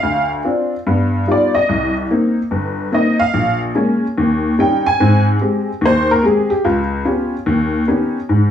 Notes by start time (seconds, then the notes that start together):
Already playing: F5
0.03 D2
0.45 C4 D4 F4
0.87 G2 B3
1.27 G3 B3 D#4 F4
1.32 D5
1.55 D#5
1.69 C2
2.11 A#3 C4 D#4
2.51 G1
2.92 A#3 C4 D#4 D#5
3.19 F5
3.34 A#1
3.75 G#3 A#3 C#4
4.18 D#2
4.59 G3 C#4 D#4 G5
4.86 G#5
5.00 G#2 C4
5.41 G#3 C4 G4
5.81 D#2
5.86 C5
6.11 A#4
6.23 G#3 C4 G4 G#4
6.50 G4
6.65 C#2 F4
7.05 B3 C#4 F4 G4
7.46 D#2
7.88 B3 C#4 D#4 G4
8.29 G#2